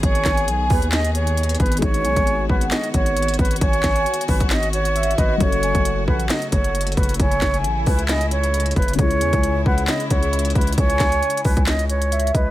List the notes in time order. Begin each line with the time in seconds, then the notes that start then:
Already playing: D#3 G#3 B3 D#4 G#4 B4
0.03 G#1 C#5 G#5, kick, closed hi-hat
0.15 closed hi-hat
0.25 G#1, kick, snare, clap, closed hi-hat
0.37 closed hi-hat
0.48 B1, closed hi-hat
0.70 D#2 B4, kick, open hi-hat
0.82 closed hi-hat
0.92 D#5, snare, clap, closed hi-hat
1.04 closed hi-hat
1.15 C#5, closed hi-hat
1.27 closed hi-hat
1.37 closed hi-hat
1.43 closed hi-hat
1.49 closed hi-hat
1.55 closed hi-hat
1.60 G#1 B4, kick, closed hi-hat
1.66 closed hi-hat
1.72 closed hi-hat
1.77 G#3, closed hi-hat
1.82 G#1 D#4 F#4 C#5, kick, closed hi-hat
1.94 closed hi-hat
2.04 B1 G#5, closed hi-hat
2.16 G#1, kick, closed hi-hat
2.27 closed hi-hat
2.49 G#1 B4 F#5, kick
2.61 closed hi-hat
2.71 D#5, snare, clap, closed hi-hat
2.84 closed hi-hat
2.94 G#1 C#5, kick, closed hi-hat
3.06 closed hi-hat
3.17 closed hi-hat
3.22 closed hi-hat
3.28 closed hi-hat
3.34 closed hi-hat
3.39 G#1 B4, kick, closed hi-hat
3.45 closed hi-hat
3.51 closed hi-hat
3.56 closed hi-hat
3.61 G#1 C#5 G#5, kick, closed hi-hat
3.73 closed hi-hat
3.83 G#1, kick, snare, clap, closed hi-hat
3.96 closed hi-hat
4.06 closed hi-hat
4.14 closed hi-hat
4.21 closed hi-hat
4.28 G#1 B4, kick, open hi-hat
4.40 kick, closed hi-hat
4.50 D#5, snare, clap, closed hi-hat
4.63 closed hi-hat
4.73 C#5, closed hi-hat
4.85 closed hi-hat
4.96 E5, closed hi-hat
5.03 closed hi-hat
5.11 closed hi-hat
5.18 G#1 B4 D#5, kick, closed hi-hat
5.38 F#1 C#3 F#3 A3 C#4 C#5, kick, closed hi-hat
5.45 A4
5.52 closed hi-hat
5.63 G#5, closed hi-hat
5.75 F#1, kick, closed hi-hat
5.85 closed hi-hat
6.08 A1 B4 F#5, kick
6.20 closed hi-hat
6.29 D#5, snare, clap, closed hi-hat
6.42 closed hi-hat
6.52 F#1 C#5, kick, closed hi-hat
6.64 closed hi-hat
6.75 closed hi-hat
6.81 closed hi-hat
6.87 closed hi-hat
6.92 closed hi-hat
6.97 F#1 B4, kick, closed hi-hat
7.03 closed hi-hat
7.09 closed hi-hat
7.14 closed hi-hat
7.20 F#1 E4 C#5 G#5, kick, closed hi-hat
7.31 closed hi-hat
7.41 F#1, kick, snare, clap, closed hi-hat
7.54 closed hi-hat
7.64 A1, closed hi-hat
7.86 C#2 B4, kick, open hi-hat
7.99 closed hi-hat
8.08 D#5, snare, clap, closed hi-hat
8.21 closed hi-hat
8.31 C#5, closed hi-hat
8.44 closed hi-hat
8.54 closed hi-hat
8.60 closed hi-hat
8.66 closed hi-hat
8.71 closed hi-hat
8.76 F#1 B4, kick, closed hi-hat
8.82 closed hi-hat
8.88 closed hi-hat
8.93 C#3, closed hi-hat
8.98 C#2 G#3 E4 C#5, kick, closed hi-hat
9.11 closed hi-hat
9.21 E2 G#5, closed hi-hat
9.33 C#2, kick, closed hi-hat
9.43 closed hi-hat
9.66 C#2 B4 F#5, kick
9.78 closed hi-hat
9.88 D#5, snare, clap, closed hi-hat
10.00 closed hi-hat
10.10 C#2 C#5, kick, closed hi-hat
10.23 closed hi-hat
10.33 closed hi-hat
10.39 closed hi-hat
10.45 closed hi-hat
10.50 closed hi-hat
10.55 C#2 B4, kick, closed hi-hat
10.61 closed hi-hat
10.67 closed hi-hat
10.73 closed hi-hat
10.78 C#2 C#5 G#5, kick, closed hi-hat
10.90 closed hi-hat
10.99 C#2, kick, snare, clap, closed hi-hat
11.12 closed hi-hat
11.23 closed hi-hat
11.30 closed hi-hat
11.37 closed hi-hat
11.45 C#2 B4, kick, open hi-hat
11.57 kick, closed hi-hat
11.67 D#5, snare, clap, closed hi-hat
11.79 closed hi-hat
11.89 C#5, closed hi-hat
12.02 closed hi-hat
12.12 E5, closed hi-hat
12.20 closed hi-hat
12.27 closed hi-hat
12.35 C#2 B4 D#5, kick, closed hi-hat